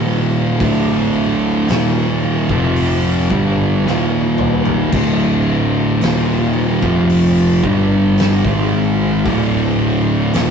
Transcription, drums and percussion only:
0.60 kick loud
0.60 open hi-hat medium
1.68 snare loud
1.68 open hi-hat medium
2.49 kick loud
2.76 open hi-hat medium
3.30 kick loud
3.87 snare medium
4.38 mid tom medium
4.65 floor tom medium
4.92 kick loud
4.92 crash loud
6.01 snare loud
6.01 open hi-hat medium
6.82 kick loud
7.10 open hi-hat medium
7.64 kick loud
8.18 snare loud
8.18 open hi-hat medium
8.45 kick loud
9.25 kick loud
9.25 open hi-hat medium
10.34 snare loud
10.34 open hi-hat medium

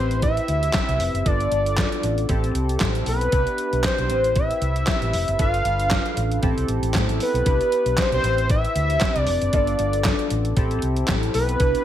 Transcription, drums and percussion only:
0.11 closed hi-hat soft
0.22 kick loud
0.22 closed hi-hat medium
0.37 closed hi-hat soft
0.48 closed hi-hat medium
0.63 closed hi-hat medium
0.73 kick loud
0.73 snare loud
0.73 clap loud
0.73 clap medium
0.73 closed hi-hat medium
0.89 closed hi-hat medium
1.00 open hi-hat medium
1.15 closed hi-hat soft
1.26 kick loud
1.26 closed hi-hat loud
1.40 closed hi-hat soft
1.52 closed hi-hat medium
1.66 closed hi-hat soft
1.77 kick loud
1.77 snare loud
1.77 clap medium
1.77 closed hi-hat medium
1.92 closed hi-hat soft
2.03 closed hi-hat medium
2.18 closed hi-hat soft
2.29 kick loud
2.29 closed hi-hat medium
2.44 closed hi-hat soft
2.55 closed hi-hat medium
2.69 closed hi-hat soft
2.80 kick loud
2.80 snare loud
2.80 clap medium
2.80 closed hi-hat medium
2.95 closed hi-hat medium
3.06 open hi-hat medium
3.21 closed hi-hat medium
3.32 kick loud
3.32 closed hi-hat medium
3.47 closed hi-hat medium
3.58 closed hi-hat medium
3.73 closed hi-hat soft
3.84 kick loud
3.84 snare loud
3.84 clap medium
3.84 closed hi-hat medium
3.98 closed hi-hat soft
4.10 closed hi-hat medium
4.24 closed hi-hat soft
4.36 kick loud
4.36 closed hi-hat medium
4.51 closed hi-hat medium
4.62 closed hi-hat medium
4.76 closed hi-hat soft
4.87 kick loud
4.87 snare loud
4.87 clap medium
4.87 closed hi-hat medium
5.02 closed hi-hat soft
5.13 open hi-hat medium
5.28 closed hi-hat medium
5.39 kick loud
5.39 closed hi-hat medium
5.54 closed hi-hat soft
5.65 closed hi-hat medium
5.79 closed hi-hat soft
5.90 kick loud
5.90 snare loud
5.90 clap medium
5.90 closed hi-hat medium
6.06 closed hi-hat soft
6.17 closed hi-hat medium
6.32 closed hi-hat soft
6.43 kick loud
6.43 closed hi-hat medium
6.58 closed hi-hat soft
6.68 closed hi-hat medium
6.83 closed hi-hat medium
6.94 kick loud
6.94 snare loud
6.94 clap medium
6.94 closed hi-hat medium
7.09 closed hi-hat medium
7.20 open hi-hat medium
7.35 closed hi-hat soft
7.46 kick loud
7.46 closed hi-hat loud
7.61 closed hi-hat soft
7.72 closed hi-hat medium
7.86 closed hi-hat soft
7.97 kick loud
7.97 snare loud
7.97 clap medium
7.97 clap loud
7.97 closed hi-hat medium
8.12 closed hi-hat soft
8.24 closed hi-hat medium
8.38 closed hi-hat soft
8.50 kick loud
8.50 closed hi-hat medium
8.65 closed hi-hat soft
8.76 closed hi-hat medium
8.90 closed hi-hat soft
9.00 kick loud
9.00 snare loud
9.00 clap medium
9.00 closed hi-hat medium
9.16 closed hi-hat medium
9.27 open hi-hat medium
9.42 closed hi-hat medium
9.53 kick loud
9.53 closed hi-hat medium
9.67 closed hi-hat medium
9.79 closed hi-hat medium
9.93 closed hi-hat medium
10.04 kick loud
10.04 snare loud
10.04 clap medium
10.04 clap loud
10.04 closed hi-hat medium
10.19 closed hi-hat soft
10.30 closed hi-hat medium
10.45 closed hi-hat soft
10.57 kick loud
10.57 closed hi-hat medium
10.71 closed hi-hat soft
10.82 closed hi-hat medium
10.97 closed hi-hat medium
11.07 kick loud
11.07 snare loud
11.07 clap medium
11.07 closed hi-hat medium
11.23 closed hi-hat soft
11.34 open hi-hat medium
11.49 closed hi-hat soft
11.60 kick loud
11.60 closed hi-hat loud
11.75 closed hi-hat medium

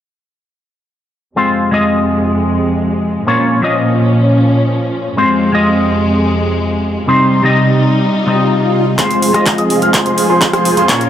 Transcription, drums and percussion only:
8.99 kick loud
8.99 clap soft
8.99 closed hi-hat loud
9.11 closed hi-hat soft
9.22 open hi-hat loud
9.34 cross-stick medium
9.34 closed hi-hat soft
9.46 kick loud
9.46 clap soft
9.46 closed hi-hat medium
9.58 closed hi-hat soft
9.70 open hi-hat medium
9.82 closed hi-hat soft
9.94 kick loud
9.94 clap soft
9.94 closed hi-hat medium
10.06 closed hi-hat soft
10.18 open hi-hat loud
10.41 kick loud
10.41 clap medium
10.41 closed hi-hat medium
10.53 cross-stick medium
10.53 closed hi-hat soft
10.65 open hi-hat medium
10.77 closed hi-hat soft
10.89 kick loud
10.89 clap medium
10.89 closed hi-hat medium
11.01 closed hi-hat soft

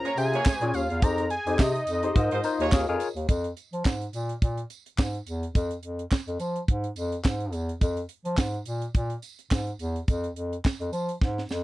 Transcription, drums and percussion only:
0.05 closed hi-hat medium
0.17 closed hi-hat medium
0.17 tambourine medium
0.33 closed hi-hat medium
0.46 kick loud
0.46 snare loud
0.46 clap loud
0.46 tambourine loud
0.61 closed hi-hat soft
0.74 closed hi-hat medium
0.74 tambourine medium
0.90 closed hi-hat soft
1.02 kick loud
1.02 closed hi-hat loud
1.02 tambourine medium
1.18 closed hi-hat medium
1.30 closed hi-hat medium
1.47 closed hi-hat medium
1.59 kick loud
1.59 snare loud
1.59 clap medium
1.59 tambourine medium
1.75 closed hi-hat soft
1.87 closed hi-hat medium
1.87 tambourine medium
2.03 closed hi-hat medium
2.16 kick loud
2.16 closed hi-hat medium
2.16 tambourine soft
2.31 closed hi-hat medium
2.44 closed hi-hat medium
2.44 tambourine medium
2.60 closed hi-hat medium
2.72 kick loud
2.72 snare loud
2.72 clap loud
2.72 tambourine loud
2.88 closed hi-hat soft
3.00 closed hi-hat medium
3.00 tambourine medium
3.16 closed hi-hat soft
3.29 kick loud
3.29 closed hi-hat medium
3.29 tambourine medium
3.44 closed hi-hat soft
3.57 closed hi-hat medium
3.57 tambourine soft
3.73 closed hi-hat soft
3.85 kick loud
3.85 snare loud
3.85 clap medium
3.85 tambourine medium
4.01 closed hi-hat soft
4.13 closed hi-hat medium
4.13 tambourine medium
4.29 closed hi-hat medium
4.42 kick loud
4.42 closed hi-hat medium
4.42 tambourine soft
4.58 closed hi-hat medium
4.70 closed hi-hat medium
4.70 tambourine medium
4.86 closed hi-hat medium
4.98 kick loud
4.98 snare loud
4.98 clap loud
4.98 tambourine medium
5.14 closed hi-hat soft
5.27 closed hi-hat medium
5.27 tambourine soft
5.43 closed hi-hat soft
5.55 kick loud
5.55 closed hi-hat medium
5.55 tambourine medium
5.71 closed hi-hat soft
5.83 closed hi-hat medium
5.99 closed hi-hat medium
6.11 kick medium
6.11 snare loud
6.11 clap medium
6.11 tambourine medium
6.28 closed hi-hat soft
6.40 closed hi-hat medium
6.40 tambourine medium
6.56 closed hi-hat medium
6.68 kick loud
6.68 closed hi-hat medium
6.84 closed hi-hat soft
6.96 closed hi-hat medium
6.96 tambourine medium
7.12 closed hi-hat medium
7.24 kick loud
7.24 snare loud
7.24 clap medium
7.24 tambourine medium
7.40 closed hi-hat soft
7.52 closed hi-hat medium
7.52 tambourine soft
7.69 closed hi-hat soft
7.81 kick loud
7.81 closed hi-hat medium
7.81 tambourine medium
7.97 closed hi-hat soft
8.09 closed hi-hat medium
8.25 closed hi-hat soft
8.38 kick loud
8.38 snare loud
8.38 clap medium
8.38 tambourine medium
8.54 closed hi-hat soft
8.66 closed hi-hat medium
8.66 tambourine medium
8.82 closed hi-hat medium
8.95 kick loud
8.95 closed hi-hat medium
8.95 tambourine soft
9.10 closed hi-hat soft
9.22 closed hi-hat medium
9.22 tambourine medium
9.39 closed hi-hat medium
9.51 kick loud
9.51 snare loud
9.51 clap medium
9.51 tambourine medium
9.67 closed hi-hat soft
9.79 closed hi-hat medium
9.79 tambourine soft
9.96 closed hi-hat soft
10.08 kick loud
10.08 closed hi-hat medium
10.08 tambourine soft
10.24 closed hi-hat soft
10.36 closed hi-hat medium
10.53 closed hi-hat soft
10.64 kick loud
10.64 snare loud
10.64 clap medium
10.64 tambourine medium
10.81 closed hi-hat soft
10.93 closed hi-hat medium
10.93 tambourine medium
11.09 closed hi-hat medium
11.21 kick loud
11.21 snare soft
11.38 snare soft
11.49 snare medium
11.49 tambourine medium

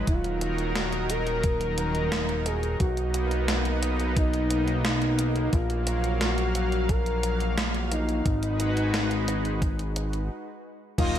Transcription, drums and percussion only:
0.07 kick loud
0.07 closed hi-hat medium
0.24 closed hi-hat soft
0.41 closed hi-hat medium
0.58 closed hi-hat soft
0.75 snare loud
0.75 closed hi-hat medium
0.92 closed hi-hat soft
1.10 closed hi-hat medium
1.27 closed hi-hat soft
1.44 kick loud
1.44 closed hi-hat medium
1.61 closed hi-hat soft
1.78 closed hi-hat medium
1.95 closed hi-hat soft
2.12 snare loud
2.12 closed hi-hat medium
2.29 closed hi-hat soft
2.46 closed hi-hat medium
2.63 closed hi-hat soft
2.80 kick loud
2.80 closed hi-hat medium
2.97 closed hi-hat soft
3.14 closed hi-hat medium
3.31 closed hi-hat soft
3.48 snare loud
3.48 closed hi-hat medium
3.65 closed hi-hat soft
3.83 closed hi-hat medium
4.00 closed hi-hat soft
4.17 kick loud
4.17 closed hi-hat medium
4.33 closed hi-hat soft
4.50 closed hi-hat medium
4.68 closed hi-hat soft
4.85 snare loud
4.85 closed hi-hat medium
5.02 closed hi-hat soft
5.19 closed hi-hat medium
5.36 closed hi-hat soft
5.53 kick loud
5.53 closed hi-hat medium
5.70 closed hi-hat soft
5.87 closed hi-hat medium
6.04 closed hi-hat soft
6.21 snare loud
6.21 closed hi-hat medium
6.38 closed hi-hat soft
6.55 closed hi-hat medium
6.72 closed hi-hat soft
6.89 kick loud
6.89 closed hi-hat medium
7.06 closed hi-hat soft
7.23 closed hi-hat medium
7.40 closed hi-hat soft
7.58 snare loud
7.58 closed hi-hat medium
7.75 closed hi-hat soft
7.92 closed hi-hat medium
8.09 closed hi-hat soft
8.26 kick loud
8.26 closed hi-hat medium
8.43 closed hi-hat soft
8.60 closed hi-hat medium
8.77 closed hi-hat soft
8.94 snare loud
8.94 closed hi-hat medium
9.11 closed hi-hat soft
9.28 closed hi-hat medium
9.45 closed hi-hat soft
9.62 kick loud
9.62 closed hi-hat medium
9.79 closed hi-hat soft
9.96 closed hi-hat medium
10.13 closed hi-hat soft
10.98 kick loud
10.98 closed hi-hat medium
10.98 crash loud
11.15 closed hi-hat soft

